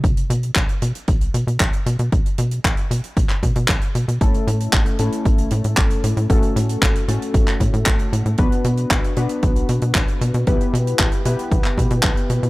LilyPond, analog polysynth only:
\new Staff \with { instrumentName = "Analog polysynth" } { \time 4/4 \key b \minor \tempo 4 = 115 r1 | r1 | <a cis' e' a'>4. <a cis' e' a'>2~ <a cis' e' a'>8 | <a cis' fis' a'>4. <a cis' fis' a'>2~ <a cis' fis' a'>8 |
<b d' fis' b'>4. <b d' fis' b'>2~ <b d' fis' b'>8 | <b e' g' b'>4. <b e' g' b'>2~ <b e' g' b'>8 | }